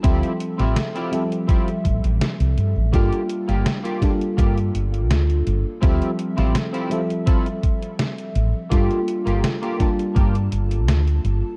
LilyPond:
<<
  \new Staff \with { instrumentName = "Clean electric guitar" } { \time 4/4 \key d \minor \tempo 4 = 83 <c' e' f' g'>8 r16 <c' e' f' g'>16 r16 <c' e' f' g'>16 r8 <c' e' f' g'>16 r4. r16 | <bes f' g'>8 r16 <bes f' g'>16 r16 <bes f' g'>16 r8 <bes f' g'>16 r4. r16 | <c' e' f' g'>8 r16 <c' e' f' g'>16 r16 <c' e' f' g'>16 r8 <c' e' f' a'>16 r4. r16 | <bes f' g'>8 r16 <bes f' g'>16 r16 <bes f' g'>16 r8 <bes f' g'>16 r4. r16 | }
  \new Staff \with { instrumentName = "FM electric piano" } { \time 4/4 \key d \minor <f g c' a' e''>4. <f g c' a' e''>2~ <f g c' a' e''>8 | <g bes d' f' a'>4. <g bes d' f' a'>2~ <g bes d' f' a'>8 | <f g c' a' e''>4. <f g c' a' e''>2~ <f g c' a' e''>8 | <g bes d' f' a'>4. <g bes d' f' a''>2~ <g bes d' f' a''>8 | }
  \new Staff \with { instrumentName = "Fretless electric bass" } { \clef bass \time 4/4 \key d \minor d,16 r8 a,,16 r4. a,,16 a,,16 r16 c,16 g,16 a,,16 | g,16 r8 g,,16 r4 g,8 g,,8 d,8 g,,16 r16 | d,16 r8 a,,16 r2 r8 a,,16 r16 | g,16 r8 g,,16 r4 g,8 g,,8 d,8 g,,16 r16 | }
  \new DrumStaff \with { instrumentName = "Drums" } \drummode { \time 4/4 <hh bd>16 hh16 hh16 <hh sn>16 <hh sn>16 hh16 hh16 hh16 <hh bd>16 hh16 <hh bd>16 hh16 <hh sn>16 hh16 hh8 | <hh bd>16 hh16 hh16 hh16 <hh sn>16 hh16 <hh bd sn>16 hh16 <hh bd>16 hh16 hh16 hh16 <hh sn>16 hh16 hh8 | <hh bd>16 hh16 hh16 <hh sn>16 <hh sn>16 hh16 hh16 hh16 <hh bd>16 hh16 <hh bd>16 hh16 <hh sn>16 hh16 hh8 | <hh bd>16 hh16 hh16 hh16 <hh sn>16 hh16 <hh bd sn>16 hh16 <hh bd>16 hh16 hh16 hh16 <hh sn>16 hh16 hh8 | }
>>